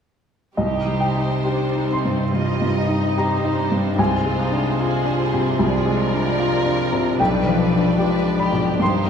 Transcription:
0.57 C2 C3 G3 D#4 G4 C5 D#5
0.86 G3
1.00 G5
1.15 D#4
1.44 D4 D#4 G4
1.76 D#4
1.92 C4 C6
2.05 G2
2.34 G3 D#4 F4 D#5
2.62 G2
2.77 D#4
2.88 D#4
3.17 G3 D#4 G4 C5 A#5
3.45 D#4
3.58 D4
3.71 G2
3.99 C2 C3 G#3 C4 F4 C5 G#5
4.26 G#3
4.38 D#4
4.52 D4
4.80 G#3 F4 G#4
5.05 D4
5.21 G3
5.33 C3
5.59 C2 F3 F4 G#4 D5
5.86 G#3
6.00 A#4
6.13 D4
6.39 F4
6.66 D4
6.93 C3
7.20 B1 B2 G3 D4 B4 D5 G5
7.47 F3
7.73 D4
7.98 G#2 F3 G4 B4
8.25 D4
8.39 G4 B5
8.52 B2
8.79 G2 D#3 D#4 G4 C5 C6

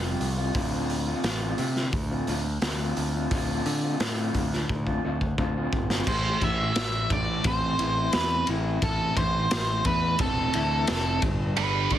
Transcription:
Already playing: F1 F3
0.03 G3 C4 F4
0.20 C2, open hi-hat
0.37 G3 C4 F4
0.54 D2 D3 A3 C4 F4, kick, open hi-hat
0.90 open hi-hat
1.06 A3 C4 F4
1.24 A1 D3 A3 C4 F4, snare, open hi-hat
1.58 C3 D3 A3 C4 F4, open hi-hat
1.76 muted clean electric guitar stroke, snare
1.93 D2, kick, open hi-hat
2.10 A3 C4 F4
2.27 D2 D3 A3 C4 F4, open hi-hat
2.45 muted clean electric guitar stroke
2.62 D2 D3 A3 C4 F4, snare, open hi-hat
2.80 A3 C4 F4
2.97 D2, open hi-hat
3.14 A3 C4 F4
3.31 D2 D3 A3 C4 F4, kick, open hi-hat
3.66 D3, open hi-hat
3.83 A3 C4 F4
4.00 A2 D3 A3 C4 F4, snare, open hi-hat
4.34 D2 D3 A3 C4 F4, kick, open hi-hat
4.52 muted clean electric guitar stroke, snare
4.69 D2, kick
4.86 A3 C4 F4, kick
5.03 D2 D3 A3 C4 F4
5.21 muted clean electric guitar stroke, kick
5.38 D2 D3 A3 C4 F4, kick
5.56 A3 C4 F4
5.73 G1, kick
5.90 A3 C4 F4, snare
6.07 A1 A2 C5, kick, crash
6.41 A1 E3 E5, kick, ride
6.76 A1 E3, snare, ride
7.10 A1 A3 D5, kick, ride
7.44 A1 C4 C5, kick, ride
7.79 A1 E4, ride
8.13 E2 C4 B4, snare, ride
8.47 A1 E4, ride
8.82 A1 A2 A4, kick, ride
9.17 A1 E3 C5, kick, ride
9.51 A1, snare, ride
9.85 E2 A3 B4, kick, ride
10.19 E1 C4 A4, kick, ride
10.53 D2 E4, ride
10.87 F1 C4, snare, ride
11.22 G1 G2, kick, ride
11.57 G1 G2 D3 G3 B4, ride
11.90 G1 G2 D3 D5, kick, ride

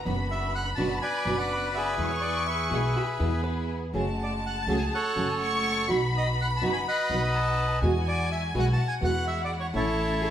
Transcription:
Already playing: B4
0.05 F#1 B2 F#3 B3 D4 F#4 B5
0.31 E5
0.55 F#5
0.65 B5
0.75 F#1 B2 F#3 B3 D4 F#4 A5
1.02 B4 D5 G#5
1.25 F#1 B2 F#3 B3 D4 F#4
1.38 B4 D5 F#5
1.75 G#4 B4 E5
1.97 E2 B2 E3 G#3 B3 E4 G#4 C#6
2.09 C#5
2.21 D5
2.46 G#4 B4 E5
2.69 B1 B2 E3 G#3 B3 E4 G#4
2.96 G#4 B5
3.19 E2 B2 E3 G#3 B3 E4 G#4
3.44 B4
3.93 F#1 C#3 F#3 G#3 A3 C#4 F#4 G#4 A5
4.23 D5
4.47 F#5
4.62 A5
4.67 C#2 C#3 F#3 A3 C#4 F#4 G#4
4.78 G#5
4.94 A4 C#5 F#5
5.16 F#1 C#3 F#3 A3 C#4 F#4 G#4 G#5
5.40 C#6
5.87 B1 B2 F#3 B3 D#4 F#4 B5
6.17 D#5
6.41 F#5
6.57 A5
6.61 F#1 B2 F#3 B3 D#4 F#4
6.73 G#5
6.88 B4 D#5 F#5
7.10 B1 B2 F#3 B3 D#4 F#4
7.33 A5
7.80 E2 B2 E3 G#3 B3 E4 F#4 G#5
8.08 D5
8.32 E5
8.53 B1 B2 E3 G#3 B3 E4 F#4
8.59 F#5
8.73 F#5 A5
8.88 G#5
9.01 E2 B2 E3 G#3 B3 E4 F#4 F#5
9.28 E5
9.45 D5
9.60 C#5
9.74 A1 E3 A3 C#4 E4 A4 C#5 A5
10.22 G#4 A5

